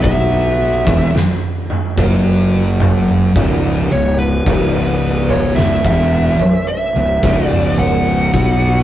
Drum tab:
SD |----o-----------|----o-----------|
T2 |----o-o---oo----|----o------o----|
FT |o--o---o--o-o---|o--o---o--o-o---|
BD |o--o---o----o---|o----o----o---o-|